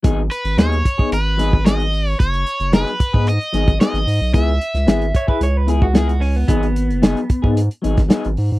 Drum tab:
HH |x-xxxxx-x-x-xxo-|xxxxxxx-xxxxxxo-|x-xxxxx-x-x-xxo-|xxxxxxx-xxxxxxo-|
SD |----o-------o---|----o-------o---|---oo-------o---|----o------oo---|
BD |o-----oo---o----|o-----oo---o----|o-----oo---o----|o-----oo---o----|